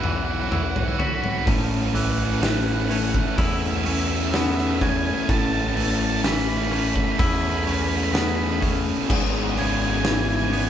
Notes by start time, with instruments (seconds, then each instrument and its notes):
Already playing: picked electric bass B1, ambient pad F#3 B3 E4 C#5 E5, clean electric guitar B3 E4 F#4
0.00 clean electric guitar E3, overdriven electric guitar E4 F#4, lead electric guitar F#5, mid tom
0.07 overdriven electric guitar E4 F#4, lead electric guitar F#5
0.16 overdriven electric guitar E4 F#4, lead electric guitar F#5
0.23 overdriven electric guitar E4 F#4, lead electric guitar F#5
0.30 overdriven electric guitar E4 F#4, lead electric guitar F#5
0.38 overdriven electric guitar E4 F#4, lead electric guitar F#5
0.46 overdriven electric guitar E4 F#4, lead electric guitar F#5
0.52 overdriven electric guitar E4 F#4, lead electric guitar F#5, mid tom
0.62 overdriven electric guitar E4 F#4, lead electric guitar F#5
0.69 overdriven electric guitar E4 F#4, lead electric guitar F#5
0.76 overdriven electric guitar E4 F#4, lead electric guitar F#5, floor tom
0.85 overdriven electric guitar E4 F#4, lead electric guitar F#5
0.92 overdriven electric guitar E4 F#4
1.00 overdriven electric guitar E4 F#4, lead electric guitar B5, floor tom
1.07 overdriven electric guitar E4 F#4, lead electric guitar B5
1.15 overdriven electric guitar E4 F#4, lead electric guitar B5
1.22 overdriven electric guitar E4 F#4, lead electric guitar B5, floor tom
1.30 overdriven electric guitar E4 F#4, lead electric guitar B5
1.38 overdriven electric guitar E4 F#4, lead electric guitar B5
1.47 picked electric bass A1, overdriven electric guitar A2 E3 A3 C#4 E4, ambient pad A3 C#4 E4 B4 E5, kick, open hi-hat
1.94 overdriven electric guitar A2 E3 A3 C#4 E4, lead electric guitar F#5, open hi-hat
2.04 lead electric guitar F#5
2.11 lead electric guitar F#5
2.19 lead electric guitar F#5
2.26 lead electric guitar F#5
2.34 lead electric guitar F#5
2.42 overdriven electric guitar A2 E3 A3 C#4 E4, lead electric guitar F#5, snare, open hi-hat
2.51 lead electric guitar F#5
2.58 lead electric guitar F#5
2.66 lead electric guitar F#5
2.73 lead electric guitar F#5
2.81 lead electric guitar F#5
2.89 overdriven electric guitar A2 E3 A3 C#4 E4, lead electric guitar F#5, open hi-hat
2.96 lead electric guitar F#5
3.04 lead electric guitar F#5
3.12 lead electric guitar F#5, kick
3.19 lead electric guitar F#5
3.27 lead electric guitar F#5
3.35 picked electric bass E2, overdriven electric guitar A2 E3 A3 C#4, lead electric guitar E5 F#5, kick, open hi-hat
3.39 overdriven electric guitar E4
3.47 lead electric guitar E5
3.53 lead electric guitar E5
3.62 lead electric guitar E5
3.71 lead electric guitar E5
3.78 lead electric guitar E5
3.85 overdriven electric guitar A2 E3 A3 C#4 E4, lead electric guitar E5, open hi-hat
3.93 lead electric guitar E5
4.00 lead electric guitar E5
4.08 lead electric guitar E5
4.15 lead electric guitar E5
4.23 lead electric guitar E5
4.31 overdriven electric guitar A2 E3 A3 C#4 E4, clean electric guitar B3, lead electric guitar E5, snare, open hi-hat
4.39 lead electric guitar E5
4.47 lead electric guitar E5
4.55 lead electric guitar E5, snare
4.61 lead electric guitar E5
4.70 lead electric guitar E5
4.78 overdriven electric guitar A2 E3 A3, lead electric guitar E5, kick
4.82 overdriven electric guitar C#4 E4, lead electric guitar G#5, open hi-hat
4.89 lead electric guitar G#5
4.97 lead electric guitar G#5
5.07 lead electric guitar G#5
5.14 lead electric guitar G#5
5.23 lead electric guitar G#5
5.29 picked electric bass A1, overdriven electric guitar A2 E3 A3 C#4 E4, ambient pad D#5, lead electric guitar A5, kick, open hi-hat
5.38 lead electric guitar A5
5.46 lead electric guitar A5
5.53 lead electric guitar A5
5.60 lead electric guitar A5
5.69 lead electric guitar A5
5.76 overdriven electric guitar A2 E3 A3 C#4 E4, lead electric guitar A5, open hi-hat
5.83 lead electric guitar A5
5.91 lead electric guitar A5
5.99 lead electric guitar A5
6.06 lead electric guitar A5
6.13 lead electric guitar A5
6.24 overdriven electric guitar A2 E3 A3 C#4 E4, lead electric guitar B5, snare, open hi-hat
6.32 lead electric guitar B5
6.40 lead electric guitar B5
6.49 lead electric guitar B5
6.57 lead electric guitar B5
6.64 lead electric guitar B5
6.71 overdriven electric guitar A2 E3 A3 C#4 E4, lead electric guitar B5, open hi-hat
6.79 lead electric guitar B5
6.88 lead electric guitar B5
6.96 lead electric guitar B5, kick
7.05 lead electric guitar B5
7.11 lead electric guitar B5
7.19 picked electric bass E2, overdriven electric guitar A2 E3 A3 C#4 E4, lead electric guitar B5, kick, open hi-hat
7.27 lead electric guitar B5
7.34 lead electric guitar B5
7.41 lead electric guitar B5
7.50 lead electric guitar B5
7.58 lead electric guitar B5
7.65 overdriven electric guitar A2 E3 A3 C#4 E4, lead electric guitar B5, open hi-hat
7.73 lead electric guitar B5
7.82 lead electric guitar B5
7.89 lead electric guitar B5
7.96 lead electric guitar B5
8.04 lead electric guitar B5
8.12 overdriven electric guitar A2 E3 A3 C#4 E4, clean electric guitar B3, lead electric guitar B5, snare, open hi-hat
8.20 lead electric guitar B5
8.28 lead electric guitar B5
8.36 lead electric guitar B5
8.43 lead electric guitar B5
8.51 lead electric guitar B5
8.62 overdriven electric guitar A2 E3 A3 C#4 E4, kick, open hi-hat
9.09 picked electric bass G#1, overdriven electric guitar G#2 E3 G#3 B3 E4, ambient pad G#3 E4 B4 E5, kick, crash
9.57 overdriven electric guitar G#2 E3 G#3 B3 E4, clean electric guitar C#3, lead electric guitar G#5, open hi-hat
9.66 lead electric guitar G#5
9.74 lead electric guitar G#5
9.82 lead electric guitar G#5
9.90 lead electric guitar G#5
9.97 lead electric guitar G#5
10.05 overdriven electric guitar G#2 E3 G#3 B3 E4, lead electric guitar G#5, snare, open hi-hat
10.13 lead electric guitar G#5
10.20 lead electric guitar G#5
10.29 lead electric guitar G#5
10.36 lead electric guitar G#5
10.44 lead electric guitar G#5
10.51 overdriven electric guitar G#2 E3 G#3 B3 E4, lead electric guitar G#5, open hi-hat
10.60 lead electric guitar G#5